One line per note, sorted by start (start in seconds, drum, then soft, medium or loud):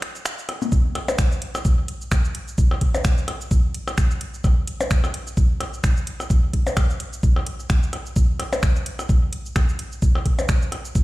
0.02 finger snap medium
0.02 closed hi-hat medium
0.15 shaker soft
0.25 finger snap medium
0.25 shaker medium
0.39 shaker soft
0.49 closed hi-hat medium
0.49 percussion blips medium
0.62 percussion blips medium
0.62 shaker soft
0.72 kick loud
0.72 shaker medium
0.95 closed hi-hat medium
0.95 percussion blips medium
1.08 closed hi-hat soft
1.08 percussion blips loud
1.08 shaker soft
1.19 finger snap loud
1.19 kick loud
1.19 shaker medium
1.32 shaker soft
1.42 closed hi-hat loud
1.55 percussion blips medium
1.55 shaker soft
1.65 kick loud
1.65 shaker medium
1.88 closed hi-hat medium
2.01 shaker soft
2.12 finger snap loud
2.12 kick loud
2.12 percussion blips medium
2.12 shaker medium
2.25 shaker soft
2.35 closed hi-hat medium
2.48 shaker soft
2.58 kick loud
2.58 shaker medium
2.71 percussion blips medium
2.81 kick medium
2.81 closed hi-hat loud
2.94 closed hi-hat soft
2.94 percussion blips loud
2.94 shaker soft
3.05 finger snap loud
3.05 kick loud
3.05 shaker medium
3.18 shaker soft
3.28 closed hi-hat loud
3.28 percussion blips medium
3.41 shaker soft
3.51 kick loud
3.51 shaker medium
3.74 closed hi-hat loud
3.88 percussion blips medium
3.88 shaker soft
3.98 finger snap medium
3.98 kick loud
3.98 shaker medium
4.11 shaker soft
4.21 closed hi-hat loud
4.34 shaker soft
4.44 kick loud
4.44 percussion blips medium
4.44 shaker medium
4.67 closed hi-hat loud
4.81 closed hi-hat soft
4.81 percussion blips medium
4.81 shaker soft
4.91 finger snap medium
4.91 kick loud
4.91 shaker medium
5.04 percussion blips medium
5.04 shaker soft
5.14 closed hi-hat loud
5.27 shaker soft
5.37 kick loud
5.37 shaker medium
5.60 closed hi-hat loud
5.60 percussion blips medium
5.74 shaker soft
5.84 finger snap loud
5.84 kick loud
5.84 shaker medium
5.97 shaker soft
6.07 closed hi-hat loud
6.20 percussion blips medium
6.20 shaker soft
6.30 kick loud
6.30 shaker medium
6.53 kick medium
6.53 closed hi-hat loud
6.67 closed hi-hat soft
6.67 percussion blips medium
6.67 shaker soft
6.77 finger snap loud
6.77 kick loud
6.77 percussion blips medium
6.77 shaker medium
6.90 shaker soft
7.00 closed hi-hat loud
7.13 shaker soft
7.23 kick loud
7.23 shaker medium
7.36 percussion blips medium
7.47 closed hi-hat loud
7.60 shaker soft
7.70 finger snap medium
7.70 kick loud
7.70 shaker medium
7.83 shaker soft
7.93 closed hi-hat medium
7.93 percussion blips medium
8.06 shaker soft
8.16 kick loud
8.16 shaker medium
8.40 closed hi-hat medium
8.40 percussion blips medium
8.53 closed hi-hat soft
8.53 percussion blips medium
8.53 shaker soft
8.63 finger snap medium
8.63 kick loud
8.63 shaker medium
8.76 shaker soft
8.86 closed hi-hat loud
8.99 percussion blips medium
8.99 shaker soft
9.09 kick loud
9.09 shaker medium
9.33 closed hi-hat medium
9.46 shaker soft
9.56 finger snap medium
9.56 kick loud
9.56 percussion blips medium
9.56 shaker medium
9.69 shaker soft
9.79 closed hi-hat medium
9.92 shaker soft
10.02 kick loud
10.02 shaker medium
10.15 percussion blips medium
10.26 kick medium
10.26 closed hi-hat medium
10.39 closed hi-hat soft
10.39 percussion blips medium
10.39 shaker soft
10.49 finger snap medium
10.49 kick loud
10.49 shaker medium
10.62 shaker soft
10.72 closed hi-hat medium
10.72 percussion blips medium
10.85 shaker soft
10.95 kick loud
10.95 shaker medium